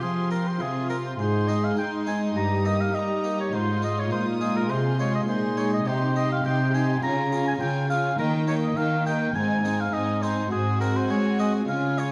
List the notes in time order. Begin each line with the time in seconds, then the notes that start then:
Already playing: F4 G4 C6
0.01 F3 G#4
0.31 C4 F4 A#4
0.47 C5
0.60 C3 F4 G#4
0.90 C4 F4 A#4
1.06 C5
1.18 G#2 D#4 G#4 C5 C6
1.48 G#3 C4 D#4 D#5
1.64 F5
1.77 G#3 D#4 G5 C6
2.06 G#3 C4 D#4 G#5
2.35 G2 G4 A#5 D#6
2.65 A#3 D#4 D#5
2.81 F5
2.94 G3 D#4 D#5 A#5
3.24 A#3 D#4
3.40 C#5
3.53 G#2 F4 C5 C6
3.82 G#3 D#4 D#5
3.99 C#5
4.11 A#2 C5 D#6
4.41 G#3 D#4 G#4
4.57 A#4
4.70 C3 G#4 C5 C6
4.99 G#3 D#4 C#5
5.15 D#5
5.28 A#2 D#4 G#4 C5 C6
5.57 G#3 D#4 C#5
5.73 D#5
5.86 C3 D#4 G4 C5 C6
6.15 D#4 G4 D#5 C6
6.32 F5
6.44 C3 D#4 G4 G5 C6
6.73 D#4 G4 G#5 C6
7.02 C#3 C#4 F4 G#5 A#5
7.32 C#4 F4 G#4 G#5
7.48 G#5
7.60 C#3 C#4 F4 G5 G#5
7.89 C#4 F4 G#4 F5 G#5
8.18 D#3 A#3 D#4 A#4 G5
8.47 A#3 D#4 G4 C#5 G5
8.63 D#5
8.76 D#3 A#3 D#4 F5 G5
9.05 A#3 D#4 G4 G5
9.34 G#2 C4 D#4 G#5
9.64 C4 D#4 G#4 G#5
9.80 F5
9.92 G#2 C4 D#4 D#5 G#5
10.21 C4 D#4 G#4 C5 G#5
10.51 G#2 C4 F#4 G#4 G#5
10.81 C4 F#4 G#4 A#4
10.96 C5
11.10 G#3 C#5
11.39 C4 F#4 G#4 D#5
11.68 C#3 C#4 F4 F5 G#5
11.98 C#4 F4 G#4 C#5